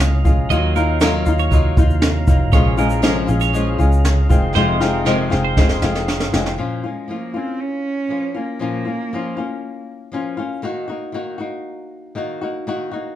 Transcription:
Already playing: fingered electric bass C#2, nylon-string guitar G#3 C#4 F4, tonewheel organ C#4 G#4 F5 A#5
0.00 snare, shaker
0.25 fingered electric bass A#1, nylon-string guitar G#3 C#4 F4, kick, shaker
0.50 fingered electric bass D#2, nylon-string guitar D#3 F#3 A#3 D#4 F4, tonewheel organ F#3 D#4, clean electric guitar D#5, shaker
0.76 nylon-string guitar D#3 F#3 A#3 D#4 F4, clean electric guitar A#4, shaker
1.00 nylon-string guitar D#3 F#3 A#3 D#4 F4, clean electric guitar A#4, snare, shaker
1.26 fingered electric bass D#2, nylon-string guitar A#3 D#4 F4, shaker
1.39 clean electric guitar C#5, shaker
1.51 nylon-string guitar F#3 A#3 D#4 F4, kick, shaker
1.77 fingered electric bass D#2, nylon-string guitar A#3 D#4 F4, kick, shaker
1.90 shaker
2.02 snare, shaker
2.27 fingered electric bass F1, nylon-string guitar A#3 D#4 F4, kick, shaker
2.52 fingered electric bass A#1, nylon-string guitar A#2 F3 G#3 C#4 F4, tonewheel organ C#4 G#4 A#5, clean electric guitar C#5, kick, shaker
2.77 nylon-string guitar A#2 F3 G#3 C#4 F4, clean electric guitar A#4, shaker
2.90 shaker
3.02 nylon-string guitar A#2 F3 G#3 C#4 F4, clean electric guitar A#4, snare, shaker
3.27 fingered electric bass A#1, nylon-string guitar G#3 C#4 F4, shaker
3.41 clean electric guitar C#5, snare, shaker
3.53 nylon-string guitar F3 G#3 C#4 F4, shaker
3.79 fingered electric bass C#2, nylon-string guitar G#3 C#4 F4, shaker
3.92 shaker
4.05 snare, shaker
4.29 fingered electric bass F1, nylon-string guitar D#3 G#3 C4 F4, tonewheel organ D#4 C6, kick, shaker
4.55 fingered electric bass F1, nylon-string guitar F2 C3 D#3 G#3 C4 F4, clean electric guitar C5, snare
4.80 nylon-string guitar F2 C3 D#3 G#3 C4 F4, clean electric guitar A#4, snare
5.05 nylon-string guitar F2 C3 D#3 G#3 C4 F4, clean electric guitar A#4, snare
5.30 fingered electric bass F1, nylon-string guitar D#3 G#3 C4 F4, snare
5.45 clean electric guitar C5
5.57 nylon-string guitar D#3 G#3 C4 F4, kick, snare
5.69 snare
5.82 fingered electric bass F1, nylon-string guitar D#3 G#3 C4 F4, snare
5.95 snare
6.08 snare
6.20 snare
6.33 fingered electric bass F1, nylon-string guitar D#3 G#3 C4 F4, snare
6.46 snare
6.58 nylon-string guitar A#2 F3 A#3 C#4 F4
6.84 cello G#3, nylon-string guitar A#3 C#4 F4
7.08 nylon-string guitar F3 A#3 C#4 F4
7.12 cello A#3
7.34 nylon-string guitar A#3 C#4 F4, cello C4
7.60 cello C#4
8.09 nylon-string guitar F3 A#3 C#4 F4
8.34 cello A#3, nylon-string guitar A#3 C#4 F4
8.59 nylon-string guitar A#2 F3 A#3 C#4 F4
8.85 nylon-string guitar A#3 C#4 F4
9.13 nylon-string guitar F3 A#3 C#4 F4
9.37 nylon-string guitar A#3 C#4 F4
10.12 nylon-string guitar F3 A#3 C#4 F4
10.37 nylon-string guitar A#3 C#4 F4
10.62 nylon-string guitar D#3 A#3 D#4 F#4
10.88 nylon-string guitar A#3 D#4 F#4
11.12 nylon-string guitar D#3 A#3 D#4 F#4
11.38 nylon-string guitar A#3 D#4 F#4
12.15 nylon-string guitar D#3 A#3 D#4 F#4
12.41 nylon-string guitar A#3 D#4 F#4
12.67 nylon-string guitar D#3 A#3 D#4 F#4
12.91 nylon-string guitar A#3 D#4 F#4

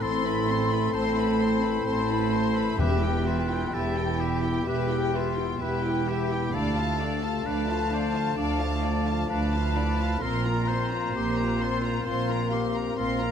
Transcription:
Already playing: timpani A2, french horn section C4 A4
0.01 double bass section A1, cello section A2, viola section C4, clarinet E4, oboe A4, violin section C5 C6, flute C6
0.25 viola section E4, violin section B4 B5
0.49 viola section C4, violin section C5 C6
0.72 viola section E4, violin section B4 B5
0.93 double bass section A1, cello section A2, viola section C4, clarinet E4, oboe C5, violin section C5 C6, flute A5
1.17 viola section E4, violin section B4 B5
1.40 viola section C4, violin section C5 C6
1.63 viola section E4, violin section B4 B5
1.85 double bass section A1, cello section A2, viola section C4, violin section C5 C6, flute A5
2.08 viola section E4, violin section B4 B5
2.32 viola section C4, violin section C5 C6
2.55 viola section E4, violin section B4 B5
2.78 double bass section E1, cello section E2, timpani E2, french horn section B3 G4, viola section G4, clarinet G4, oboe B4, violin section B4 E5, flute G5
3.00 viola section E4, violin section G5
3.05 violin section G4
3.25 clarinet F4, viola section G4, violin section B4 E5
3.49 viola section E4, violin section G4 G5
3.73 double bass section E1, cello section E2, clarinet E4, viola section G4, oboe A4, violin section B4 E5
3.96 viola section E4, violin section G4 G5
4.19 viola section G4, oboe G4, violin section B4 E5
4.43 viola section E4, violin section G4 G5
4.66 double bass section E1, cello section E2, viola section G4, clarinet G4, oboe B4, violin section B4 E5, flute G5
4.89 viola section E4, violin section G4 G5
5.13 clarinet F4, viola section G4, violin section B4 E5
5.36 viola section E4, violin section G4 G5
5.59 double bass section E1, cello section E2, clarinet E4, viola section G4, oboe B4, violin section B4 E5, flute G5
5.83 viola section E4, violin section G4 G5
6.06 viola section G4, oboe G4, violin section B4 E5
6.30 viola section E4, violin section G4 G5
6.53 cello section D2, double bass section D2, french horn section A3, viola section D4, oboe A4, violin section D5 F5, flute A5
6.76 viola section F4, violin section F5 A5
7.00 viola section D4, violin section D5 F5
7.23 viola section F4, violin section F5 A5
7.45 cello section D2, double bass section D2, french horn section F3, viola section D4, clarinet D4, oboe B4, violin section D5 F5
7.68 viola section F4, violin section F5 A5
7.91 viola section D4, oboe C5, violin section D5 F5
8.14 viola section F4, violin section F5 A5
8.37 cello section D2, double bass section D2, viola section D4, violin section D5 F5, oboe D5
8.59 viola section F4, violin section F5 A5
8.83 viola section D4, violin section D5 F5
9.06 viola section F4, violin section F5 A5
9.29 double bass section D2, cello section D2, clarinet D4, viola section D4, oboe B4, violin section D5 F5, flute A5
9.52 viola section F4, violin section F5 A5
9.76 viola section D4, clarinet E4, violin section D5 F5
9.98 viola section F4, violin section F5 A5
10.21 double bass section A#1, cello section A#2, french horn section C4 A#4, viola section C4, clarinet F4, oboe A#4, violin section C5 C6, flute A#5
10.45 viola section F4, violin section A#4 A#5
10.67 viola section C4, oboe C5, violin section C5 C6
10.91 viola section F4, violin section A#4 A#5
11.14 double bass section A#1, cello section A#2, viola section C4, clarinet G4, violin section C5 C6
11.37 viola section F4, violin section A#4 A#5
11.59 viola section C4, clarinet F4, violin section C5 C6
11.82 viola section F4, violin section A#4 A#5
12.05 double bass section A#1, cello section A#2, viola section C4, clarinet F4, violin section C5 C6, flute F5
12.29 viola section F4, violin section A#4 A#5
12.51 viola section C4, clarinet G4, violin section C5 C6
12.75 viola section F4, violin section A#4 A#5
12.97 double bass section A#1, cello section A#2, viola section C4, clarinet F4, oboe A#4, violin section C5 C6, flute F5
13.21 viola section F4, violin section A#4 A#5

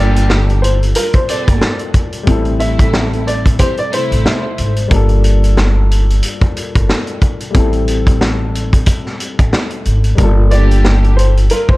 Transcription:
Already playing: upright bass G1, string section D3 A#3 G4, grand piano G3 A#3 D4 F4 A4, upright piano D5
0.16 closed hi-hat
0.30 snare
0.50 closed hi-hat
0.62 upright piano C5, closed hi-hat
0.83 closed hi-hat
0.95 string section G3 F4 A#4, upright piano A#4, closed hi-hat
1.13 upright piano C5, kick, closed hi-hat
1.29 string section C4 A4 C5, upright piano D5, closed hi-hat
1.48 upright bass G1, kick, closed hi-hat
1.61 snare
1.79 closed hi-hat
1.94 kick, closed hi-hat
2.13 closed hi-hat
2.23 grand piano G3 A3 C4, kick
2.27 upright bass A1, grand piano E4 A4, closed hi-hat
2.45 closed hi-hat
2.60 string section C3 A3 E4, upright piano E5, closed hi-hat
2.79 kick, closed hi-hat
2.93 snare
3.13 closed hi-hat
3.27 upright piano D5, closed hi-hat
3.46 kick, closed hi-hat
3.59 string section E3 C4 G4, upright piano C5, kick, closed hi-hat
3.77 upright piano D5, closed hi-hat
3.92 string section C3 A3 E4, upright piano C5, closed hi-hat
4.12 upright bass A1, closed hi-hat
4.25 snare
4.58 upright bass G#1, closed hi-hat
4.76 closed hi-hat
4.88 upright bass G1, grand piano G3 A#3 D4, kick, closed hi-hat
4.94 grand piano F4 A4
5.09 closed hi-hat
5.24 closed hi-hat
5.44 closed hi-hat
5.57 snare
5.91 closed hi-hat
6.10 closed hi-hat
6.23 closed hi-hat
6.41 kick, closed hi-hat
6.57 closed hi-hat
6.75 upright bass G1, kick, closed hi-hat
6.89 snare
7.07 closed hi-hat
7.22 kick, closed hi-hat
7.40 closed hi-hat
7.51 grand piano G3 A3 C4
7.55 upright bass A1, grand piano E4 A4, kick, closed hi-hat
7.73 closed hi-hat
7.88 closed hi-hat
8.07 kick, closed hi-hat
8.21 snare
8.55 closed hi-hat
8.73 kick, closed hi-hat
8.86 kick, closed hi-hat
9.06 snare
9.20 closed hi-hat
9.39 upright bass A1, kick, closed hi-hat
9.53 snare
9.70 closed hi-hat
9.85 upright bass G#1, closed hi-hat
10.04 closed hi-hat
10.15 upright bass G1, grand piano G3 A#3 D4, kick, closed hi-hat
10.21 grand piano F4 A4
10.51 string section D3 A#3 G4, upright piano D5, closed hi-hat
10.71 closed hi-hat
10.84 snare
11.04 closed hi-hat
11.17 upright piano C5, closed hi-hat
11.37 closed hi-hat
11.50 string section G3 F4 A#4, upright piano A#4, closed hi-hat
11.69 upright piano C5, kick

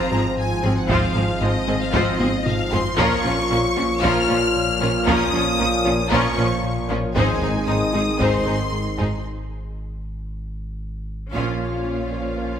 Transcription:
Already playing: sub bass G#1, trombone section G#2 F3, analog synth pad F3 C4 F4 C5, french horn section C4 F4, violin section A#5
0.12 double bass section G#1, analog synth bass G#2, cello section G#2, viola section F3 C4, violin section C4 G#4, synth pluck F4
0.37 analog synth bass G#2, violin section G#5
0.63 double bass section G#1, analog synth bass G#2, cello section G#2, viola section F3 C4, violin section C4 G#4, synth pluck F4
0.78 violin section F#5
0.89 double bass section G#1, analog synth bass G#2, cello section G#2, synth pluck F3, viola section F3 C4, violin section F4 C5 F5, taiko
1.15 double bass section G#1, analog synth bass G#2, cello section G#2, viola section F3 C4, synth pluck G#3, violin section C4 G#4
1.41 double bass section G#1, analog synth bass G#2, cello section G#2, viola section F3 C4, violin section G#3 F4 D#5, synth pluck F4
1.67 double bass section G#1, cello section G#2, viola section F3 C4, analog synth bass G#3, violin section C4 G#4, synth pluck C4
1.82 violin section F5
1.93 double bass section G#1, analog synth bass G#2, cello section G#2, viola section F3 C4, synth pluck F3, violin section F4 C5 D#5, taiko
2.19 double bass section G#1, analog synth bass G#2, cello section G#2, viola section F3 C4, violin section C4 G#4, synth pluck F4, taiko high
2.46 analog synth bass G#2, violin section F5, taiko low-mid
2.72 double bass section G#1, analog synth bass G#2, cello section G#2, viola section F3 C4, violin section C4 G#4 C6, synth pluck F4, taiko low
2.97 sub bass A#1, double bass section A#1, trombone section A#2 F3, analog synth bass A#2, cello section A#2, analog synth pad F3 A#3 F4 C#5, viola section F3 C#4, synth pluck A#3, french horn section A#3 F4, violin section F4 A#4 C#6, taiko
3.24 double bass section A#1, analog synth bass A#2, cello section A#2, viola section F3 C#4, synth pluck C#4, violin section C#4 F4
3.50 double bass section A#1, cello section A#2, analog synth bass A#2, viola section F3 C#4, violin section A#3 C#4, synth pluck A#4
3.76 double bass section A#1, cello section A#2, viola section F3 C#4, analog synth bass A#3, violin section C#4 F4, synth pluck F4
4.02 double bass section A#1, cello section A#2, analog synth bass A#2, viola section F3 C#4, synth pluck A#3, violin section F4 A#4 F6, taiko
4.28 double bass section A#1, cello section A#2, analog synth bass A#2, viola section F3 C#4, violin section C#4 F4, synth pluck A#4
4.56 analog synth bass A#2
4.80 double bass section A#1, cello section A#2, analog synth bass A#2, viola section F3 C#4, violin section C#4 F4, synth pluck A#4
5.07 double bass section A#1, analog synth bass A#2, cello section A#2, viola section F3 C#4, synth pluck A#3, violin section F4 A#4 D#6, taiko
5.33 double bass section A#1, analog synth bass A#2, cello section A#2, viola section F3 C#4, synth pluck C#4, violin section C#4 F4
5.59 double bass section A#1, analog synth bass A#2, cello section A#2, viola section F3 C#4, violin section A#3 C#4, synth pluck A#4
5.84 double bass section A#1, cello section A#2, viola section F3 C#4, analog synth bass A#3, violin section C#4 F4, synth pluck F4
6.10 double bass section A#1, analog synth bass A#2, cello section A#2, viola section F3 C#4, synth pluck A#3, violin section F4 A#4 C#6, taiko
6.37 double bass section A#1, analog synth bass A#2, cello section A#2, viola section F3 C#4, violin section C#4 F4, synth pluck A#4
6.63 analog synth bass A#2
6.89 double bass section A#1, analog synth bass A#2, cello section A#2, viola section F3 C#4, violin section C#4 F4, synth pluck A#4
7.15 double bass section G#1, sub bass G#1, cello section G#2, analog synth bass G#2, analog synth pad D#3 G#3 G#4 D#5, trombone section D#3 G#3, synth pluck G#3, french horn section C4 D#4, viola section C4 D#4, violin section G#4 C5 G#5, taiko
7.42 double bass section G#1, analog synth bass G#2, cello section G#2, synth pluck C4, viola section C4 D#4, violin section D#4 G#4, taiko low
7.67 double bass section G#1, analog synth bass G#2, cello section G#2, viola section C4 D#4, violin section C4 D#4 D#6, synth pluck G#4
7.93 double bass section G#1, cello section G#2, analog synth bass G#3, viola section C4 D#4, synth pluck D#4, violin section D#4 G#4
8.19 double bass section G#1, analog synth bass G#2, cello section G#2, synth pluck G#3, viola section C4 D#4, violin section G#4 C5 C6, taiko
8.45 double bass section G#1, analog synth bass G#2, cello section G#2, viola section C4 D#4, violin section D#4 G#4, synth pluck G#4
8.72 analog synth bass G#2
8.98 double bass section G#1, analog synth bass G#2, cello section G#2, viola section C4 D#4, violin section D#4 G#4, synth pluck G#4, taiko low
11.33 double bass section A#1, sub bass A#1, cello section A#2, analog synth pad F3 A#3 F4 C#5, french horn section F3 C#4, synth pluck A#3, viola section C#4 F4, violin section F4 F5, taiko
11.60 synth pluck C#4
11.86 synth pluck C#4
12.12 synth pluck A#3
12.38 synth pluck A#4

